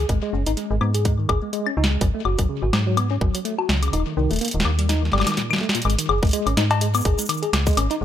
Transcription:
0.09 G#1 G#3, kick, closed hi-hat
0.23 G#3
0.33 F#1 C#4
0.46 G#1 D#4, closed hi-hat
0.57 G#3, closed hi-hat
0.70 G#1 G#3
0.81 G#2 B3, high woodblock
0.94 G#4, closed hi-hat
1.05 G#3, kick, closed hi-hat
1.18 D#3
1.29 G#1 G#4, kick, high woodblock
1.42 G#3
1.53 G#3, closed hi-hat
1.67 C#4, high woodblock
1.77 C#2 D#4
1.84 snare
1.91 G#3
2.01 G#1 F#3, kick, closed hi-hat
2.15 A3
2.25 F#1 F#4, high woodblock
2.39 G#1 F#3, kick, closed hi-hat
2.49 C#3
2.62 G#1 F#4
2.73 G#2 F#3, snare, high woodblock
2.87 F#3
2.97 B3, closed hi-hat, high woodblock
3.11 C#4
3.21 G#1 F#3, kick
3.35 F#3, closed hi-hat
3.45 A3, closed hi-hat
3.59 F#4, high woodblock
3.69 C#2 F#3, snare
3.83 C#3, closed hi-hat, high woodblock
3.88 high woodblock
3.93 D#1 D#4, closed hi-hat, high woodblock
4.00 high woodblock
4.07 D#3
4.17 C2 D#3
4.31 D#1 A3, closed hi-hat
4.33 closed hi-hat
4.36 closed hi-hat
4.39 A#3, closed hi-hat
4.41 closed hi-hat
4.45 closed hi-hat
4.48 closed hi-hat
4.51 D#1 D#3, closed hi-hat
4.60 snare
4.65 D#2 D#3, high woodblock
4.78 G3, closed hi-hat
4.89 D#4, snare, closed hi-hat
5.02 D#3, snare
5.12 G1 G3, snare, high woodblock
5.18 snare, high woodblock
5.21 snare
5.24 D#3, snare
5.27 snare, closed hi-hat, high woodblock
5.29 snare, high woodblock
5.34 A#2, snare
5.37 snare, closed hi-hat
5.42 snare
5.51 D#3, snare, high woodblock
5.56 snare
5.58 snare
5.60 A3, snare
5.63 snare
5.69 snare
5.75 A#2, closed hi-hat
5.82 G#1 G#3, closed hi-hat, high woodblock
5.90 closed hi-hat
5.99 D#3, closed hi-hat
6.09 F#1 G#4, high woodblock
6.23 G#1 G#3, kick, closed hi-hat
6.25 closed hi-hat
6.27 closed hi-hat
6.29 closed hi-hat
6.31 closed hi-hat
6.33 G#3, closed hi-hat
6.46 G#1 C#4, closed hi-hat, high woodblock
6.57 G#2 D#4, snare, closed hi-hat
6.71 G#3, closed hi-hat, cowbell, high woodblock
6.81 G#3, closed hi-hat
6.95 B3, closed hi-hat, high woodblock, shaker
6.97 shaker
6.99 shaker
7.01 shaker
7.03 G#1 G#4, kick, closed hi-hat, shaker
7.19 G#3, closed hi-hat, shaker
7.21 shaker
7.26 D#3, closed hi-hat, high woodblock, shaker
7.29 shaker
7.34 shaker
7.37 shaker
7.43 G#4, closed hi-hat
7.53 C#2 G#3, snare, closed hi-hat, high woodblock
7.67 G#3, kick, closed hi-hat, shaker
7.69 closed hi-hat
7.71 closed hi-hat
7.73 closed hi-hat
7.75 G#1 C#4, closed hi-hat
7.77 closed hi-hat, high woodblock
7.91 D#4, closed hi-hat
8.01 F#1 G#3

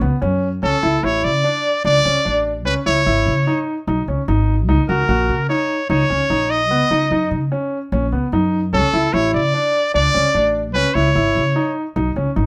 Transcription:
0.01 C#2 B3
0.22 F#2 C#4
0.63 C#2 C#4 A4
0.83 C#2 E4
1.03 A1 E4 C#5
1.24 C#3 D5
1.44 D4
1.85 C#2 D4 D5
2.05 C#2 C#4
2.25 A1 D4
2.65 C#2 C#4 B4
2.86 C#2 E4 C#5
3.06 G#1 E4
3.26 C#3
3.47 D#4
3.87 B1 D#4
4.08 C#2 C#4
4.28 G#1 D#4
4.69 C#2 D#4
4.89 C#2 F#4 A#4
5.09 A#1 F#4
5.29 C#3
5.49 D#4 C#5
5.90 C#2 D#4 C#5
6.10 C#2 C#4
6.30 A#1 D#4
6.50 D#5
6.70 C#2 B3
6.91 C#2 D#4
7.11 F#2 D#4
7.31 C#3
7.52 C#4
7.92 A#1 C#4
8.12 C#2 B3
8.32 F#2 D#4
8.73 C#2 C#4 A4
8.93 C#2 E4
9.13 A1 E4 C#5
9.34 C#3 D5
9.54 D4
9.94 C#2 D4 D5
10.14 C#2 C#4
10.34 A1 D4
10.74 C#2 C#4 B4
10.94 C#2 E4 C#5
11.15 G#1 E4
11.35 C#3
11.56 D#4
11.96 B1 D#4
12.16 C#2 C#4
12.36 G#1 D#4

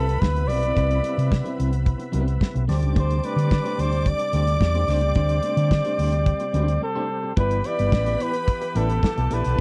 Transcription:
Already playing: C2 C3 G3 B3 E4 A4 B4 B5
0.08 muted clean electric guitar stroke, closed hi-hat
0.20 D2 B4, muted clean electric guitar stroke, kick, snare
0.36 muted clean electric guitar stroke, closed hi-hat
0.47 B1 G3 C4 E4 B4 D5, open hi-hat
0.63 G3 C4 E4 B4, closed hi-hat
0.76 C2 G3 C4 E4 B4, kick, closed hi-hat
0.91 closed hi-hat
1.03 G3 C4 E4 B4, closed hi-hat
1.17 C3 G3 C4 E4 B4, closed hi-hat
1.31 muted clean electric guitar stroke, kick, snare
1.44 G3 C4 E4 B4, closed hi-hat
1.58 C2 G3 C4 E4 B4, closed hi-hat
1.72 muted clean electric guitar stroke, closed hi-hat
1.86 kick, closed hi-hat
1.98 muted clean electric guitar stroke, closed hi-hat
2.12 C2 G3 C4 E4 B4, closed hi-hat
2.27 muted clean electric guitar stroke, closed hi-hat
2.40 muted clean electric guitar stroke, kick, snare
2.54 B1, muted clean electric guitar stroke, closed hi-hat
2.68 D2 C3 G3 A3 D4 G4 C5 D5 D6, snare, open hi-hat
2.81 C#2 A3 D4 G4 C5, closed hi-hat
2.95 D2 A3 D4 G4 C5, kick, closed hi-hat
3.10 closed hi-hat
3.23 A3 D4 G4 B4 C5, closed hi-hat
3.36 D3 A3 D4 G4 C5, closed hi-hat
3.50 muted clean electric guitar stroke, kick, snare
3.64 A3 D4 G4 C5, closed hi-hat
3.78 D2 A3 D4 G4 C5, closed hi-hat
3.92 muted clean electric guitar stroke, closed hi-hat
4.06 D5, kick, closed hi-hat
4.19 muted clean electric guitar stroke, closed hi-hat
4.33 D2 A3 D4 G4 C5, closed hi-hat
4.46 muted clean electric guitar stroke, closed hi-hat
4.61 E2, muted clean electric guitar stroke, kick, snare
4.75 A3 D4 G4 C5, closed hi-hat
4.88 C#2 A3 C4 D4 G4 C5, snare, open hi-hat
5.01 muted clean electric guitar stroke, closed hi-hat
5.15 D2 A3 D4 G4 C5, kick, closed hi-hat
5.29 closed hi-hat
5.43 A3 D4 G4 C5, closed hi-hat
5.57 D3 A3 D4 G4 C5, closed hi-hat
5.71 muted clean electric guitar stroke, kick, snare
5.85 A3 D4 G4 C5, closed hi-hat
5.98 D2 A3 D4 G4 C5, open hi-hat
6.12 muted clean electric guitar stroke, closed hi-hat
6.26 kick, closed hi-hat
6.40 muted clean electric guitar stroke, closed hi-hat
6.54 D2 A3 D4 G4 C5, closed hi-hat
6.68 muted clean electric guitar stroke, closed hi-hat
6.82 A4, muted clean electric guitar stroke
6.95 A3 D4 G4 C5
7.09 muted clean electric guitar stroke
7.23 muted clean electric guitar stroke
7.37 G1 E3 B3 E4 G4 B4 D5 B5, kick, closed hi-hat
7.51 closed hi-hat
7.64 B3 E4 G4 D5, closed hi-hat
7.79 G1 B3 E4 G4 D5, closed hi-hat
7.92 A1, kick, snare
8.06 B3 E4 G4 D5, closed hi-hat
8.20 B3 E4 G4 B4 D5, closed hi-hat
8.33 muted clean electric guitar stroke, closed hi-hat
8.48 kick, closed hi-hat
8.61 muted clean electric guitar stroke, closed hi-hat
8.75 A1 B3 E4 G4 A4 D5, closed hi-hat
8.89 muted clean electric guitar stroke, closed hi-hat
9.03 A4 A5, muted clean electric guitar stroke, kick, snare
9.17 B1, muted clean electric guitar stroke, closed hi-hat
9.31 A#1 B3 E4 G4 B4 D5, closed hi-hat
9.44 B1 E4 G4 D5, closed hi-hat

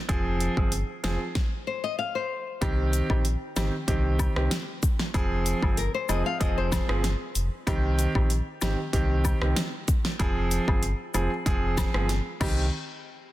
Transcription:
0.09 F1 F3 C4 G#4, kick, closed hi-hat
0.40 closed hi-hat
0.57 G1 F3 C4 G#4, kick
0.72 closed hi-hat
1.04 F1 F3 C4 G#4, snare, closed hi-hat
1.35 kick, snare
1.67 C5
1.84 D#5
1.99 F5
2.15 C5
2.61 C2 D#3 C4 G4, kick, closed hi-hat, high woodblock
2.93 closed hi-hat, cabasa
3.10 A#1 D#3 C4 G4, kick, high woodblock
3.25 closed hi-hat
3.56 G#1 D#3 C4 G4, snare, closed hi-hat, cabasa, high woodblock
3.88 C2 D#3 C4 G4, kick, closed hi-hat
4.19 kick, closed hi-hat, cabasa, high woodblock
4.36 C2 D#3 C4 G4, cross-stick
4.51 snare, closed hi-hat
4.83 kick, closed hi-hat, cabasa
4.99 snare
5.14 F1 F3 C4 G#4, kick, closed hi-hat, high woodblock
5.46 closed hi-hat, cabasa
5.62 G1 F3 C4 G#4, kick, high woodblock
5.77 A#4, closed hi-hat
5.94 C5
6.09 F1 F3 C4 G#4 D#5, closed hi-hat, cabasa, high woodblock
6.26 F5
6.40 F1 F3 C4 G#4 D#5, kick, closed hi-hat
6.58 C5
6.72 kick, snare, closed hi-hat, cabasa, high woodblock
6.89 G1 F3 C4 G#4, cross-stick
7.04 snare, closed hi-hat
7.35 F1, closed hi-hat, cabasa
7.67 C2 D#3 C4 G4, kick, closed hi-hat, high woodblock
7.99 closed hi-hat, cabasa
8.15 A#1 D#3 C4 G4, kick, high woodblock
8.30 closed hi-hat
8.61 G#1 D#3 C4 G4, snare, closed hi-hat, cabasa, high woodblock
8.93 C2 D#3 C4 G4, kick, closed hi-hat
9.25 kick, closed hi-hat, cabasa, high woodblock
9.41 C2 D#3 C4 G4, cross-stick
9.56 snare, closed hi-hat
9.88 kick, closed hi-hat, cabasa
10.05 snare
10.19 F1 F3 C4 G#4, kick, closed hi-hat, high woodblock
10.51 closed hi-hat, cabasa
10.68 G1 F3 C4 G#4, kick, high woodblock
10.83 closed hi-hat
11.14 F1 F3 C4 G#4, closed hi-hat, cabasa, high woodblock
11.46 F1 F3 C4 G#4, kick, closed hi-hat
11.77 kick, snare, closed hi-hat, cabasa, high woodblock
11.94 G1 F3 C4 G#4, cross-stick
12.09 snare, closed hi-hat
12.40 C2 D#3 C4 G4, kick, crash, high woodblock

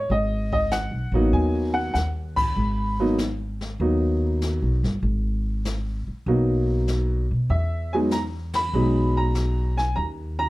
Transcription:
Already playing: C#5
0.10 G#1 D#5, brush sweep
0.53 D#5, kick
0.71 F#5, snare, hi-hat pedal
0.91 B1
1.12 A1 F#3 A#3 B3 D#4
1.33 D#2 G#5, brush sweep
1.74 F#5
1.94 D#2 F#5, snare, hi-hat pedal
2.36 B5, kick, crash
2.56 G#1, brush sweep
3.00 F#3 A#3 B3 D#4
3.18 snare, hi-hat pedal
3.61 snare
3.80 D#2 F#3 A#3 B3 D#4, brush sweep
4.41 snare, hi-hat pedal
4.62 B1
4.83 G1, snare
5.03 G#1, brush sweep
5.65 snare, hi-hat pedal
6.08 muted upright bass stroke
6.26 B1 F#3 A#3 B3 D#4, brush sweep
6.88 snare, hi-hat pedal
7.31 B2
7.49 E2 E5, brush sweep
7.93 F#3 G#3 B3 D#4 G#5
8.11 A#5, snare, hi-hat pedal
8.53 B5, snare, ride
8.73 B1 F#3 G#3 B3 D#4, brush sweep
9.17 A#5
9.35 snare, hi-hat pedal
9.77 G#5, snare
9.96 D#2 A#5, brush sweep
10.39 A#5

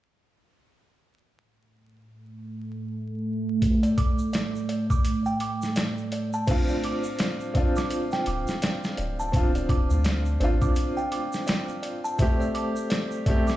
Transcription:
0.75 A3 A4
3.62 kick, closed hi-hat, shaker
3.83 D5, closed hi-hat, shaker
3.98 D6, kick, closed hi-hat
4.19 shaker
4.33 D5, snare, closed hi-hat, shaker
4.55 shaker
4.69 D5, closed hi-hat
4.90 D6, kick, shaker
5.05 closed hi-hat, shaker
5.26 G5, shaker
5.40 D6, closed hi-hat
5.62 snare, shaker
5.76 D5, snare, closed hi-hat, shaker
5.98 shaker
6.12 D5, closed hi-hat
6.33 A5, shaker
6.47 C4 D4 F4, kick, closed hi-hat, crash, shaker
6.68 D5, shaker
6.84 D6, closed hi-hat
7.04 shaker
7.19 D5, snare, closed hi-hat, shaker
7.40 shaker
7.54 C4 D4 F4 D5, kick, closed hi-hat
7.76 D6, snare, shaker
7.90 closed hi-hat, shaker
8.12 G5, snare, shaker
8.26 D1 D6, closed hi-hat
8.47 snare, shaker
8.62 D5, snare, closed hi-hat, shaker
8.84 snare, shaker
8.97 D1 D5, closed hi-hat
9.19 A5, shaker
9.32 C4 D4 F4, kick, closed hi-hat, shaker
9.55 D5, closed hi-hat, shaker
9.69 D6, kick, closed hi-hat
9.90 D2, shaker
10.04 D5, snare, closed hi-hat, shaker
10.26 shaker
10.40 A1 C4 D4 F4 D5, closed hi-hat
10.61 D6, kick, shaker
10.75 closed hi-hat, shaker
10.97 G5, shaker
11.12 D6, closed hi-hat
11.33 snare, shaker
11.47 D5, snare, closed hi-hat, shaker
11.68 shaker
11.83 D5, closed hi-hat
12.04 A5, shaker
12.18 A3 C4 G4, kick, closed hi-hat, shaker
12.40 D5, shaker
12.54 D6, closed hi-hat
12.76 shaker
12.90 D5, snare, closed hi-hat, shaker
13.11 shaker
13.26 A3 C4 G4 D5, kick, closed hi-hat
13.47 D6, snare, shaker

